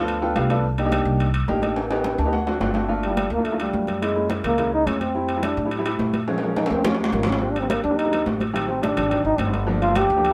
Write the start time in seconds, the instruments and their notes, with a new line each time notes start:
Already playing: upright bass D2, trombone F3, alto saxophone F4
0.01 upright piano B3 D4 F4 A4
0.08 high conga, high timbale
0.22 upright piano B3 D4 F4 A4 G5, high conga
0.36 upright bass C2, upright piano B3 D4 F4 G4 F5, high conga, high timbale, low timbale
0.49 upright piano B3 D4 F4 A4 D5, high conga, high timbale
0.64 high conga
0.78 upright piano A#3 D4 D#4 G4, high conga, high timbale
0.85 upright piano A#3 D4 D#4 G4
0.92 high conga, high timbale
1.05 upright bass C2, high conga
1.20 high conga, high timbale
1.34 high conga, high timbale
1.48 upright bass A1, upright piano A#3 D4 D#4 G4, high conga, low timbale
1.62 upright piano A#3 D4 D#4 G4, high conga, high timbale
1.76 high conga, high timbale
1.90 upright piano B3 C4 D#4 G4, high conga, high timbale
2.04 high conga, high timbale
2.18 upright bass D2, upright piano A5, high timbale
2.25 upright piano B3 C4 D#4 G4
2.32 upright piano F#5, high conga, low timbale
2.46 upright piano A3 C4 D4 F#4 D5, high conga, low timbale
2.61 upright bass G1, upright piano A3 C4 D4 F#4 C5, high conga, low timbale
2.74 upright piano A3 C4 D4 F#4, high conga, low timbale
2.88 upright piano A3 A#3 D4 F4, high conga
3.03 trombone G3, high conga, high timbale
3.09 upright piano A3 A#3 D4 F4
3.17 high conga, high timbale
3.30 upright bass D2, trombone A#3, high conga
3.38 upright piano A3 A#3 D4 F4
3.45 trombone A3, high conga, high timbale
3.52 upright piano A3 A#3 D4 F4
3.59 trombone G3, upright piano A3 A#3 D4 F4, high conga, high timbale
3.73 upright bass F#2, high conga
3.87 high conga, high timbale
4.01 upright piano G#3 A#3 C#4 E4, trombone G#3, high conga, high timbale
4.15 upright piano G#3 A#3 C#4 E4, high conga
4.29 upright piano G#3 A#3 C#4 E4, high conga, high timbale
4.44 upright bass C#2, trombone A#3, low conga, high timbale
4.58 upright piano G#3 A#3 C#4 E4, high conga, low conga, high timbale
4.73 trombone D#4, high conga
4.87 upright bass F2, trombone C#4, high conga, high timbale, low timbale
5.01 trombone C4, high conga, high timbale
5.14 upright piano G3 A3 C4 E4, high conga
5.29 high conga, high timbale
5.36 upright piano G3 A3 C4 E4
5.43 trombone D4, high conga, high timbale
5.57 upright bass A2, high conga
5.65 upright piano G3 A3 C4 E4
5.71 high conga, high timbale
5.78 upright piano G3 A3 C4 E4
5.85 upright piano G3 A3 C4 E4, high conga, high timbale
5.99 upright bass A#2, high conga, low timbale
6.13 high conga, high timbale
6.28 upright piano F3 G#3 C4 C#4, high conga, high timbale
6.38 high timbale
6.42 upright piano F3 G#3 C4 C#4, high conga
6.56 upright piano F3 G#3 C4 C#4, trombone D#4, high conga, high timbale
6.66 high timbale
6.70 upright bass D#2, trombone C4, high conga
6.84 upright piano F3 G3 A#3 C#4, trombone C#4, low conga, low timbale
6.94 low timbale
6.99 trombone F3
7.04 low timbale
7.12 upright bass G#1, trombone A#3, low conga, low timbale
7.23 trombone C#4, low conga, low timbale
7.32 low timbale
7.41 upright piano D3 G3 A#3 C4, trombone C4, high conga
7.51 trombone D4
7.56 trombone C4, high conga, high timbale
7.62 upright piano D3 G3 A#3 C4
7.69 trombone A#3, high conga, high timbale
7.84 upright bass D#2, trombone D4, high conga
7.90 upright piano D3 G3 A#3 C4
7.97 trombone D#4, high conga, high timbale
8.04 upright piano D3 G3 A#3 C4
8.11 upright piano D3 G3 A#3 C4, high conga, high timbale
8.26 upright bass A1, high conga, low timbale
8.40 high conga, high timbale
8.54 upright piano D#3 G3 A3 C4, high timbale
8.68 upright piano D#3 G3 A3 C4, trombone C4, high conga
8.82 upright piano D#3 G3 A3 D4, trombone D4, high conga, high timbale
8.97 upright bass G#1, low conga, high timbale
9.09 upright piano D#3 F#3 C4 D4, high conga, low conga, high timbale
9.25 upright bass G#1, trombone D#4, high conga
9.38 upright bass G1, trombone C4, high conga, high timbale
9.54 high conga, high timbale
9.67 upright piano F3 A3 A#3 D4, high conga
9.82 trombone F4, high conga, high timbale
9.88 upright piano F3 A3 A#3 D4
9.95 trombone G4, high conga, high timbale
10.10 upright bass D2, high conga
10.17 upright piano F3 A3 A#3 D4
10.25 high conga, high timbale